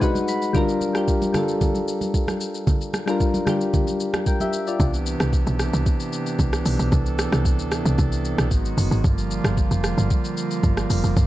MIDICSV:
0, 0, Header, 1, 5, 480
1, 0, Start_track
1, 0, Tempo, 530973
1, 495, Time_signature, 4, 2, 24, 8
1, 10186, End_track
2, 0, Start_track
2, 0, Title_t, "Synth keys"
2, 0, Program_c, 0, 88
2, 0, Control_c, 0, 64, 127
2, 0, Note_on_c, 0, 56, 86
2, 0, Note_on_c, 0, 62, 52
2, 10, Note_on_c, 0, 63, 80
2, 16, Note_on_c, 0, 78, 71
2, 21, Note_on_c, 0, 66, 81
2, 28, Control_c, 0, 64, 0
2, 34, Note_on_c, 0, 71, 98
2, 131, Note_off_c, 0, 62, 0
2, 183, Control_c, 0, 64, 127
2, 239, Note_off_c, 0, 78, 0
2, 257, Note_on_c, 0, 83, 74
2, 395, Note_off_c, 0, 56, 0
2, 401, Note_off_c, 0, 63, 0
2, 406, Note_off_c, 0, 66, 0
2, 413, Note_off_c, 0, 71, 0
2, 479, Note_off_c, 0, 83, 0
2, 481, Note_on_c, 0, 55, 113
2, 492, Note_on_c, 0, 62, 108
2, 502, Note_on_c, 0, 65, 104
2, 505, Control_c, 0, 64, 0
2, 514, Note_on_c, 0, 70, 127
2, 641, Control_c, 0, 64, 127
2, 778, Note_off_c, 0, 55, 0
2, 783, Note_off_c, 0, 62, 0
2, 789, Note_off_c, 0, 65, 0
2, 794, Note_off_c, 0, 70, 0
2, 844, Note_on_c, 0, 55, 87
2, 856, Note_on_c, 0, 62, 79
2, 868, Note_on_c, 0, 65, 77
2, 879, Note_on_c, 0, 67, 97
2, 1138, Note_off_c, 0, 55, 0
2, 1144, Note_off_c, 0, 62, 0
2, 1150, Note_off_c, 0, 65, 0
2, 1156, Note_off_c, 0, 67, 0
2, 1198, Note_on_c, 0, 55, 79
2, 1210, Note_on_c, 0, 62, 73
2, 1221, Note_on_c, 0, 65, 77
2, 1231, Note_on_c, 0, 69, 92
2, 1977, Note_off_c, 0, 55, 0
2, 1982, Note_off_c, 0, 62, 0
2, 1988, Note_off_c, 0, 65, 0
2, 1993, Note_off_c, 0, 69, 0
2, 2766, Note_on_c, 0, 55, 88
2, 2778, Note_on_c, 0, 62, 74
2, 2791, Note_on_c, 0, 65, 80
2, 2801, Note_on_c, 0, 70, 90
2, 3060, Note_off_c, 0, 55, 0
2, 3065, Note_off_c, 0, 62, 0
2, 3072, Note_off_c, 0, 65, 0
2, 3077, Note_off_c, 0, 70, 0
2, 3123, Note_on_c, 0, 55, 78
2, 3135, Note_on_c, 0, 62, 72
2, 3145, Note_on_c, 0, 65, 70
2, 3158, Note_on_c, 0, 67, 84
2, 3860, Note_off_c, 0, 65, 0
2, 3861, Note_on_c, 0, 79, 65
2, 3867, Note_off_c, 0, 67, 0
2, 3867, Note_on_c, 0, 70, 54
2, 3899, Note_off_c, 0, 55, 0
2, 3905, Note_off_c, 0, 62, 0
2, 3977, Note_off_c, 0, 79, 0
2, 3980, Note_off_c, 0, 70, 0
2, 3985, Note_on_c, 0, 76, 72
2, 3992, Note_on_c, 0, 67, 65
2, 4211, Note_off_c, 0, 76, 0
2, 4214, Note_off_c, 0, 67, 0
2, 4227, Note_on_c, 0, 74, 68
2, 4234, Note_on_c, 0, 65, 58
2, 4348, Control_c, 0, 64, 0
2, 4452, Note_off_c, 0, 74, 0
2, 4455, Note_off_c, 0, 65, 0
2, 10186, End_track
3, 0, Start_track
3, 0, Title_t, "Pipe organ"
3, 0, Program_c, 1, 19
3, 4338, Note_on_c, 1, 48, 71
3, 4338, Note_on_c, 1, 52, 64
3, 4338, Note_on_c, 1, 59, 66
3, 4338, Note_on_c, 1, 67, 77
3, 4339, Note_on_c, 1, 62, 61
3, 6237, Note_off_c, 1, 67, 0
3, 6261, Note_on_c, 1, 69, 73
3, 7663, Note_off_c, 1, 48, 0
3, 7663, Note_off_c, 1, 52, 0
3, 7664, Note_off_c, 1, 62, 0
3, 7684, Note_off_c, 1, 69, 0
3, 7699, Note_on_c, 1, 51, 73
3, 7700, Note_on_c, 1, 56, 63
3, 7701, Note_on_c, 1, 66, 76
3, 7702, Note_on_c, 1, 54, 67
3, 8141, Note_off_c, 1, 59, 0
3, 8172, Note_off_c, 1, 51, 0
3, 8173, Note_off_c, 1, 56, 0
3, 8173, Note_off_c, 1, 66, 0
3, 8174, Note_off_c, 1, 54, 0
3, 8178, Note_on_c, 1, 50, 68
3, 8178, Note_on_c, 1, 65, 80
3, 8180, Note_on_c, 1, 53, 63
3, 8180, Note_on_c, 1, 55, 63
3, 8180, Note_on_c, 1, 58, 62
3, 10186, Note_off_c, 1, 50, 0
3, 10186, Note_off_c, 1, 53, 0
3, 10186, Note_off_c, 1, 55, 0
3, 10186, Note_off_c, 1, 58, 0
3, 10186, Note_off_c, 1, 65, 0
3, 10186, End_track
4, 0, Start_track
4, 0, Title_t, "Log drum bass"
4, 0, Program_c, 2, 39
4, 4337, Note_on_c, 2, 36, 106
4, 4661, Note_off_c, 2, 36, 0
4, 4703, Note_on_c, 2, 36, 95
4, 4916, Note_off_c, 2, 36, 0
4, 4944, Note_on_c, 2, 35, 93
4, 5156, Note_off_c, 2, 35, 0
4, 5184, Note_on_c, 2, 36, 93
4, 5285, Note_off_c, 2, 36, 0
4, 5776, Note_on_c, 2, 36, 97
4, 5990, Note_off_c, 2, 36, 0
4, 6016, Note_on_c, 2, 35, 92
4, 6127, Note_off_c, 2, 35, 0
4, 6142, Note_on_c, 2, 35, 88
4, 6244, Note_off_c, 2, 35, 0
4, 6257, Note_on_c, 2, 36, 112
4, 6581, Note_off_c, 2, 36, 0
4, 6621, Note_on_c, 2, 36, 95
4, 6860, Note_on_c, 2, 38, 85
4, 6873, Note_off_c, 2, 36, 0
4, 7074, Note_off_c, 2, 38, 0
4, 7100, Note_on_c, 2, 36, 100
4, 7203, Note_off_c, 2, 36, 0
4, 7219, Note_on_c, 2, 36, 98
4, 7543, Note_off_c, 2, 36, 0
4, 7578, Note_on_c, 2, 35, 86
4, 7695, Note_on_c, 2, 32, 109
4, 7708, Note_off_c, 2, 35, 0
4, 7909, Note_off_c, 2, 32, 0
4, 7934, Note_on_c, 2, 30, 97
4, 8046, Note_off_c, 2, 30, 0
4, 8057, Note_on_c, 2, 32, 97
4, 8161, Note_off_c, 2, 32, 0
4, 8175, Note_on_c, 2, 31, 107
4, 8500, Note_off_c, 2, 31, 0
4, 8537, Note_on_c, 2, 31, 87
4, 8752, Note_off_c, 2, 31, 0
4, 8779, Note_on_c, 2, 29, 94
4, 8993, Note_off_c, 2, 29, 0
4, 9019, Note_on_c, 2, 31, 96
4, 9122, Note_off_c, 2, 31, 0
4, 9614, Note_on_c, 2, 31, 91
4, 9828, Note_off_c, 2, 31, 0
4, 9855, Note_on_c, 2, 29, 92
4, 9967, Note_off_c, 2, 29, 0
4, 9979, Note_on_c, 2, 29, 87
4, 10082, Note_off_c, 2, 29, 0
4, 10094, Note_on_c, 2, 31, 109
4, 10186, Note_off_c, 2, 31, 0
4, 10186, End_track
5, 0, Start_track
5, 0, Title_t, "Drums"
5, 15, Note_on_c, 9, 36, 87
5, 16, Note_on_c, 9, 82, 76
5, 105, Note_off_c, 9, 36, 0
5, 106, Note_off_c, 9, 82, 0
5, 137, Note_on_c, 9, 63, 76
5, 142, Note_on_c, 9, 82, 56
5, 227, Note_off_c, 9, 63, 0
5, 232, Note_off_c, 9, 82, 0
5, 255, Note_on_c, 9, 82, 89
5, 345, Note_off_c, 9, 82, 0
5, 381, Note_on_c, 9, 82, 53
5, 471, Note_off_c, 9, 82, 0
5, 493, Note_on_c, 9, 64, 73
5, 495, Note_on_c, 9, 36, 119
5, 495, Note_on_c, 9, 82, 77
5, 584, Note_off_c, 9, 64, 0
5, 586, Note_off_c, 9, 36, 0
5, 586, Note_off_c, 9, 82, 0
5, 620, Note_on_c, 9, 82, 50
5, 711, Note_off_c, 9, 82, 0
5, 733, Note_on_c, 9, 63, 50
5, 735, Note_on_c, 9, 82, 93
5, 824, Note_off_c, 9, 63, 0
5, 826, Note_off_c, 9, 82, 0
5, 857, Note_on_c, 9, 37, 87
5, 860, Note_on_c, 9, 82, 58
5, 948, Note_off_c, 9, 37, 0
5, 951, Note_off_c, 9, 82, 0
5, 976, Note_on_c, 9, 36, 89
5, 977, Note_on_c, 9, 82, 86
5, 1067, Note_off_c, 9, 36, 0
5, 1067, Note_off_c, 9, 82, 0
5, 1102, Note_on_c, 9, 63, 78
5, 1102, Note_on_c, 9, 82, 56
5, 1192, Note_off_c, 9, 63, 0
5, 1192, Note_off_c, 9, 82, 0
5, 1214, Note_on_c, 9, 63, 70
5, 1214, Note_on_c, 9, 64, 68
5, 1215, Note_on_c, 9, 37, 94
5, 1215, Note_on_c, 9, 82, 84
5, 1305, Note_off_c, 9, 37, 0
5, 1305, Note_off_c, 9, 63, 0
5, 1305, Note_off_c, 9, 64, 0
5, 1306, Note_off_c, 9, 82, 0
5, 1342, Note_on_c, 9, 82, 59
5, 1432, Note_off_c, 9, 82, 0
5, 1457, Note_on_c, 9, 64, 70
5, 1458, Note_on_c, 9, 82, 67
5, 1459, Note_on_c, 9, 36, 99
5, 1547, Note_off_c, 9, 64, 0
5, 1548, Note_off_c, 9, 82, 0
5, 1549, Note_off_c, 9, 36, 0
5, 1579, Note_on_c, 9, 63, 63
5, 1584, Note_on_c, 9, 82, 57
5, 1669, Note_off_c, 9, 63, 0
5, 1674, Note_off_c, 9, 82, 0
5, 1699, Note_on_c, 9, 82, 80
5, 1789, Note_off_c, 9, 82, 0
5, 1819, Note_on_c, 9, 63, 73
5, 1822, Note_on_c, 9, 82, 53
5, 1909, Note_off_c, 9, 63, 0
5, 1913, Note_off_c, 9, 82, 0
5, 1936, Note_on_c, 9, 36, 84
5, 1938, Note_on_c, 9, 82, 73
5, 2026, Note_off_c, 9, 36, 0
5, 2028, Note_off_c, 9, 82, 0
5, 2058, Note_on_c, 9, 63, 72
5, 2063, Note_on_c, 9, 37, 76
5, 2064, Note_on_c, 9, 82, 54
5, 2149, Note_off_c, 9, 63, 0
5, 2153, Note_off_c, 9, 37, 0
5, 2154, Note_off_c, 9, 82, 0
5, 2176, Note_on_c, 9, 82, 90
5, 2266, Note_off_c, 9, 82, 0
5, 2302, Note_on_c, 9, 82, 54
5, 2392, Note_off_c, 9, 82, 0
5, 2415, Note_on_c, 9, 64, 77
5, 2416, Note_on_c, 9, 36, 125
5, 2417, Note_on_c, 9, 82, 80
5, 2505, Note_off_c, 9, 64, 0
5, 2507, Note_off_c, 9, 36, 0
5, 2507, Note_off_c, 9, 82, 0
5, 2541, Note_on_c, 9, 82, 52
5, 2632, Note_off_c, 9, 82, 0
5, 2653, Note_on_c, 9, 63, 47
5, 2657, Note_on_c, 9, 37, 89
5, 2657, Note_on_c, 9, 82, 93
5, 2744, Note_off_c, 9, 63, 0
5, 2747, Note_off_c, 9, 37, 0
5, 2747, Note_off_c, 9, 82, 0
5, 2780, Note_on_c, 9, 37, 92
5, 2783, Note_on_c, 9, 82, 59
5, 2871, Note_off_c, 9, 37, 0
5, 2874, Note_off_c, 9, 82, 0
5, 2897, Note_on_c, 9, 36, 89
5, 2897, Note_on_c, 9, 82, 85
5, 2987, Note_off_c, 9, 36, 0
5, 2987, Note_off_c, 9, 82, 0
5, 3020, Note_on_c, 9, 63, 78
5, 3023, Note_on_c, 9, 82, 54
5, 3110, Note_off_c, 9, 63, 0
5, 3114, Note_off_c, 9, 82, 0
5, 3134, Note_on_c, 9, 63, 70
5, 3134, Note_on_c, 9, 64, 70
5, 3137, Note_on_c, 9, 37, 96
5, 3138, Note_on_c, 9, 82, 83
5, 3224, Note_off_c, 9, 63, 0
5, 3224, Note_off_c, 9, 64, 0
5, 3228, Note_off_c, 9, 37, 0
5, 3228, Note_off_c, 9, 82, 0
5, 3263, Note_on_c, 9, 82, 63
5, 3353, Note_off_c, 9, 82, 0
5, 3377, Note_on_c, 9, 64, 68
5, 3378, Note_on_c, 9, 82, 69
5, 3379, Note_on_c, 9, 36, 98
5, 3467, Note_off_c, 9, 64, 0
5, 3469, Note_off_c, 9, 82, 0
5, 3470, Note_off_c, 9, 36, 0
5, 3499, Note_on_c, 9, 63, 63
5, 3503, Note_on_c, 9, 82, 59
5, 3589, Note_off_c, 9, 63, 0
5, 3593, Note_off_c, 9, 82, 0
5, 3617, Note_on_c, 9, 82, 78
5, 3708, Note_off_c, 9, 82, 0
5, 3740, Note_on_c, 9, 37, 97
5, 3740, Note_on_c, 9, 63, 69
5, 3741, Note_on_c, 9, 82, 53
5, 3830, Note_off_c, 9, 63, 0
5, 3831, Note_off_c, 9, 37, 0
5, 3832, Note_off_c, 9, 82, 0
5, 3855, Note_on_c, 9, 82, 75
5, 3856, Note_on_c, 9, 36, 88
5, 3946, Note_off_c, 9, 36, 0
5, 3946, Note_off_c, 9, 82, 0
5, 3980, Note_on_c, 9, 63, 76
5, 3983, Note_on_c, 9, 82, 56
5, 4070, Note_off_c, 9, 63, 0
5, 4074, Note_off_c, 9, 82, 0
5, 4097, Note_on_c, 9, 82, 87
5, 4187, Note_off_c, 9, 82, 0
5, 4223, Note_on_c, 9, 82, 51
5, 4313, Note_off_c, 9, 82, 0
5, 4337, Note_on_c, 9, 36, 124
5, 4339, Note_on_c, 9, 82, 81
5, 4427, Note_off_c, 9, 36, 0
5, 4429, Note_off_c, 9, 82, 0
5, 4464, Note_on_c, 9, 82, 53
5, 4554, Note_off_c, 9, 82, 0
5, 4577, Note_on_c, 9, 82, 98
5, 4668, Note_off_c, 9, 82, 0
5, 4702, Note_on_c, 9, 37, 96
5, 4705, Note_on_c, 9, 82, 60
5, 4792, Note_off_c, 9, 37, 0
5, 4795, Note_off_c, 9, 82, 0
5, 4818, Note_on_c, 9, 36, 89
5, 4819, Note_on_c, 9, 82, 92
5, 4908, Note_off_c, 9, 36, 0
5, 4909, Note_off_c, 9, 82, 0
5, 4944, Note_on_c, 9, 82, 60
5, 5034, Note_off_c, 9, 82, 0
5, 5058, Note_on_c, 9, 37, 90
5, 5059, Note_on_c, 9, 82, 83
5, 5148, Note_off_c, 9, 37, 0
5, 5149, Note_off_c, 9, 82, 0
5, 5185, Note_on_c, 9, 82, 64
5, 5276, Note_off_c, 9, 82, 0
5, 5300, Note_on_c, 9, 82, 71
5, 5301, Note_on_c, 9, 36, 107
5, 5390, Note_off_c, 9, 82, 0
5, 5391, Note_off_c, 9, 36, 0
5, 5425, Note_on_c, 9, 82, 64
5, 5515, Note_off_c, 9, 82, 0
5, 5539, Note_on_c, 9, 82, 84
5, 5630, Note_off_c, 9, 82, 0
5, 5663, Note_on_c, 9, 82, 58
5, 5754, Note_off_c, 9, 82, 0
5, 5776, Note_on_c, 9, 36, 87
5, 5777, Note_on_c, 9, 82, 77
5, 5867, Note_off_c, 9, 36, 0
5, 5867, Note_off_c, 9, 82, 0
5, 5903, Note_on_c, 9, 37, 81
5, 5904, Note_on_c, 9, 82, 61
5, 5993, Note_off_c, 9, 37, 0
5, 5995, Note_off_c, 9, 82, 0
5, 6017, Note_on_c, 9, 46, 72
5, 6017, Note_on_c, 9, 82, 88
5, 6108, Note_off_c, 9, 46, 0
5, 6108, Note_off_c, 9, 82, 0
5, 6142, Note_on_c, 9, 82, 55
5, 6232, Note_off_c, 9, 82, 0
5, 6257, Note_on_c, 9, 36, 121
5, 6257, Note_on_c, 9, 82, 82
5, 6347, Note_off_c, 9, 36, 0
5, 6347, Note_off_c, 9, 82, 0
5, 6383, Note_on_c, 9, 82, 54
5, 6473, Note_off_c, 9, 82, 0
5, 6498, Note_on_c, 9, 37, 98
5, 6498, Note_on_c, 9, 82, 97
5, 6588, Note_off_c, 9, 37, 0
5, 6589, Note_off_c, 9, 82, 0
5, 6622, Note_on_c, 9, 37, 96
5, 6625, Note_on_c, 9, 82, 58
5, 6712, Note_off_c, 9, 37, 0
5, 6715, Note_off_c, 9, 82, 0
5, 6737, Note_on_c, 9, 36, 92
5, 6739, Note_on_c, 9, 82, 86
5, 6828, Note_off_c, 9, 36, 0
5, 6829, Note_off_c, 9, 82, 0
5, 6863, Note_on_c, 9, 82, 61
5, 6954, Note_off_c, 9, 82, 0
5, 6976, Note_on_c, 9, 37, 94
5, 6976, Note_on_c, 9, 82, 85
5, 7066, Note_off_c, 9, 37, 0
5, 7067, Note_off_c, 9, 82, 0
5, 7103, Note_on_c, 9, 82, 65
5, 7193, Note_off_c, 9, 82, 0
5, 7217, Note_on_c, 9, 82, 72
5, 7219, Note_on_c, 9, 36, 107
5, 7307, Note_off_c, 9, 82, 0
5, 7309, Note_off_c, 9, 36, 0
5, 7343, Note_on_c, 9, 82, 59
5, 7433, Note_off_c, 9, 82, 0
5, 7457, Note_on_c, 9, 82, 83
5, 7548, Note_off_c, 9, 82, 0
5, 7580, Note_on_c, 9, 37, 95
5, 7581, Note_on_c, 9, 82, 56
5, 7670, Note_off_c, 9, 37, 0
5, 7671, Note_off_c, 9, 82, 0
5, 7695, Note_on_c, 9, 36, 89
5, 7695, Note_on_c, 9, 82, 77
5, 7785, Note_off_c, 9, 36, 0
5, 7786, Note_off_c, 9, 82, 0
5, 7823, Note_on_c, 9, 82, 59
5, 7914, Note_off_c, 9, 82, 0
5, 7936, Note_on_c, 9, 46, 76
5, 7936, Note_on_c, 9, 82, 88
5, 8027, Note_off_c, 9, 46, 0
5, 8027, Note_off_c, 9, 82, 0
5, 8062, Note_on_c, 9, 82, 56
5, 8153, Note_off_c, 9, 82, 0
5, 8175, Note_on_c, 9, 36, 127
5, 8176, Note_on_c, 9, 82, 85
5, 8265, Note_off_c, 9, 36, 0
5, 8266, Note_off_c, 9, 82, 0
5, 8300, Note_on_c, 9, 82, 52
5, 8390, Note_off_c, 9, 82, 0
5, 8415, Note_on_c, 9, 82, 97
5, 8506, Note_off_c, 9, 82, 0
5, 8538, Note_on_c, 9, 37, 98
5, 8541, Note_on_c, 9, 82, 62
5, 8629, Note_off_c, 9, 37, 0
5, 8632, Note_off_c, 9, 82, 0
5, 8655, Note_on_c, 9, 36, 91
5, 8656, Note_on_c, 9, 82, 90
5, 8746, Note_off_c, 9, 36, 0
5, 8746, Note_off_c, 9, 82, 0
5, 8780, Note_on_c, 9, 82, 58
5, 8870, Note_off_c, 9, 82, 0
5, 8894, Note_on_c, 9, 37, 93
5, 8895, Note_on_c, 9, 82, 85
5, 8984, Note_off_c, 9, 37, 0
5, 8985, Note_off_c, 9, 82, 0
5, 9022, Note_on_c, 9, 82, 66
5, 9113, Note_off_c, 9, 82, 0
5, 9136, Note_on_c, 9, 82, 70
5, 9137, Note_on_c, 9, 36, 102
5, 9226, Note_off_c, 9, 82, 0
5, 9228, Note_off_c, 9, 36, 0
5, 9261, Note_on_c, 9, 82, 63
5, 9352, Note_off_c, 9, 82, 0
5, 9377, Note_on_c, 9, 82, 82
5, 9467, Note_off_c, 9, 82, 0
5, 9500, Note_on_c, 9, 82, 59
5, 9591, Note_off_c, 9, 82, 0
5, 9614, Note_on_c, 9, 36, 88
5, 9614, Note_on_c, 9, 82, 78
5, 9704, Note_off_c, 9, 36, 0
5, 9704, Note_off_c, 9, 82, 0
5, 9739, Note_on_c, 9, 37, 78
5, 9740, Note_on_c, 9, 82, 59
5, 9829, Note_off_c, 9, 37, 0
5, 9831, Note_off_c, 9, 82, 0
5, 9855, Note_on_c, 9, 46, 77
5, 9855, Note_on_c, 9, 82, 92
5, 9945, Note_off_c, 9, 46, 0
5, 9945, Note_off_c, 9, 82, 0
5, 9980, Note_on_c, 9, 82, 54
5, 10070, Note_off_c, 9, 82, 0
5, 10095, Note_on_c, 9, 36, 126
5, 10096, Note_on_c, 9, 82, 82
5, 10185, Note_off_c, 9, 36, 0
5, 10186, Note_off_c, 9, 82, 0
5, 10186, End_track
0, 0, End_of_file